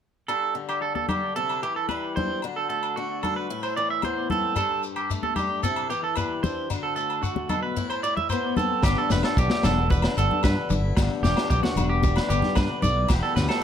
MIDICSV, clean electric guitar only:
0, 0, Header, 1, 3, 480
1, 0, Start_track
1, 0, Key_signature, 1, "major"
1, 0, Tempo, 533808
1, 256, Time_signature, 4, 2, 24, 8
1, 12261, End_track
2, 0, Start_track
2, 0, Title_t, "Clean electric guitar"
2, 0, Program_c, 0, 27
2, 256, Note_on_c, 0, 69, 76
2, 484, Note_off_c, 0, 69, 0
2, 623, Note_on_c, 0, 67, 59
2, 731, Note_off_c, 0, 67, 0
2, 735, Note_on_c, 0, 69, 62
2, 844, Note_off_c, 0, 69, 0
2, 855, Note_on_c, 0, 69, 59
2, 970, Note_off_c, 0, 69, 0
2, 978, Note_on_c, 0, 67, 56
2, 1206, Note_off_c, 0, 67, 0
2, 1221, Note_on_c, 0, 69, 71
2, 1448, Note_off_c, 0, 69, 0
2, 1465, Note_on_c, 0, 67, 72
2, 1576, Note_off_c, 0, 67, 0
2, 1584, Note_on_c, 0, 69, 62
2, 1693, Note_off_c, 0, 69, 0
2, 1697, Note_on_c, 0, 71, 67
2, 1925, Note_off_c, 0, 71, 0
2, 1941, Note_on_c, 0, 72, 66
2, 2168, Note_off_c, 0, 72, 0
2, 2305, Note_on_c, 0, 69, 57
2, 2411, Note_off_c, 0, 69, 0
2, 2422, Note_on_c, 0, 69, 64
2, 2648, Note_off_c, 0, 69, 0
2, 2662, Note_on_c, 0, 66, 70
2, 2888, Note_off_c, 0, 66, 0
2, 2905, Note_on_c, 0, 69, 58
2, 3016, Note_off_c, 0, 69, 0
2, 3024, Note_on_c, 0, 71, 56
2, 3250, Note_off_c, 0, 71, 0
2, 3265, Note_on_c, 0, 72, 63
2, 3376, Note_off_c, 0, 72, 0
2, 3385, Note_on_c, 0, 74, 66
2, 3497, Note_off_c, 0, 74, 0
2, 3510, Note_on_c, 0, 76, 64
2, 3619, Note_off_c, 0, 76, 0
2, 3638, Note_on_c, 0, 72, 64
2, 3857, Note_off_c, 0, 72, 0
2, 3872, Note_on_c, 0, 69, 72
2, 4094, Note_off_c, 0, 69, 0
2, 4106, Note_on_c, 0, 69, 86
2, 4331, Note_off_c, 0, 69, 0
2, 4463, Note_on_c, 0, 67, 55
2, 4575, Note_off_c, 0, 67, 0
2, 4703, Note_on_c, 0, 69, 63
2, 4815, Note_off_c, 0, 69, 0
2, 4819, Note_on_c, 0, 67, 67
2, 5048, Note_off_c, 0, 67, 0
2, 5065, Note_on_c, 0, 69, 73
2, 5292, Note_off_c, 0, 69, 0
2, 5304, Note_on_c, 0, 67, 61
2, 5417, Note_off_c, 0, 67, 0
2, 5428, Note_on_c, 0, 69, 60
2, 5539, Note_off_c, 0, 69, 0
2, 5549, Note_on_c, 0, 71, 67
2, 5774, Note_off_c, 0, 71, 0
2, 5781, Note_on_c, 0, 72, 73
2, 6010, Note_off_c, 0, 72, 0
2, 6141, Note_on_c, 0, 69, 60
2, 6245, Note_off_c, 0, 69, 0
2, 6256, Note_on_c, 0, 69, 67
2, 6487, Note_off_c, 0, 69, 0
2, 6498, Note_on_c, 0, 66, 69
2, 6728, Note_off_c, 0, 66, 0
2, 6740, Note_on_c, 0, 69, 58
2, 6853, Note_off_c, 0, 69, 0
2, 6857, Note_on_c, 0, 71, 68
2, 7089, Note_off_c, 0, 71, 0
2, 7101, Note_on_c, 0, 72, 61
2, 7216, Note_off_c, 0, 72, 0
2, 7222, Note_on_c, 0, 74, 70
2, 7337, Note_off_c, 0, 74, 0
2, 7343, Note_on_c, 0, 76, 65
2, 7457, Note_off_c, 0, 76, 0
2, 7463, Note_on_c, 0, 72, 72
2, 7691, Note_off_c, 0, 72, 0
2, 7706, Note_on_c, 0, 69, 78
2, 7933, Note_off_c, 0, 69, 0
2, 7951, Note_on_c, 0, 67, 91
2, 8062, Note_off_c, 0, 67, 0
2, 8075, Note_on_c, 0, 69, 75
2, 8183, Note_off_c, 0, 69, 0
2, 8199, Note_on_c, 0, 71, 83
2, 8306, Note_off_c, 0, 71, 0
2, 8318, Note_on_c, 0, 69, 56
2, 8425, Note_off_c, 0, 69, 0
2, 8440, Note_on_c, 0, 67, 78
2, 8547, Note_off_c, 0, 67, 0
2, 8557, Note_on_c, 0, 67, 72
2, 8665, Note_off_c, 0, 67, 0
2, 8670, Note_on_c, 0, 69, 67
2, 8895, Note_off_c, 0, 69, 0
2, 8910, Note_on_c, 0, 71, 76
2, 9135, Note_off_c, 0, 71, 0
2, 9153, Note_on_c, 0, 69, 78
2, 9376, Note_off_c, 0, 69, 0
2, 9387, Note_on_c, 0, 71, 73
2, 9613, Note_off_c, 0, 71, 0
2, 10098, Note_on_c, 0, 67, 84
2, 10328, Note_off_c, 0, 67, 0
2, 10339, Note_on_c, 0, 67, 81
2, 10454, Note_off_c, 0, 67, 0
2, 10458, Note_on_c, 0, 66, 72
2, 10688, Note_off_c, 0, 66, 0
2, 10696, Note_on_c, 0, 67, 77
2, 10927, Note_off_c, 0, 67, 0
2, 10940, Note_on_c, 0, 71, 66
2, 11055, Note_off_c, 0, 71, 0
2, 11056, Note_on_c, 0, 67, 85
2, 11287, Note_off_c, 0, 67, 0
2, 11292, Note_on_c, 0, 71, 75
2, 11525, Note_off_c, 0, 71, 0
2, 11532, Note_on_c, 0, 74, 83
2, 11764, Note_off_c, 0, 74, 0
2, 11893, Note_on_c, 0, 69, 76
2, 12009, Note_off_c, 0, 69, 0
2, 12013, Note_on_c, 0, 71, 80
2, 12124, Note_off_c, 0, 71, 0
2, 12127, Note_on_c, 0, 69, 71
2, 12247, Note_off_c, 0, 69, 0
2, 12261, End_track
3, 0, Start_track
3, 0, Title_t, "Muted clean electric guitar strokes"
3, 9625, Note_on_c, 9, 29, 73
3, 9715, Note_off_c, 9, 29, 0
3, 9861, Note_on_c, 9, 29, 93
3, 9950, Note_off_c, 9, 29, 0
3, 11766, Note_on_c, 9, 29, 88
3, 11856, Note_off_c, 9, 29, 0
3, 12261, End_track
0, 0, End_of_file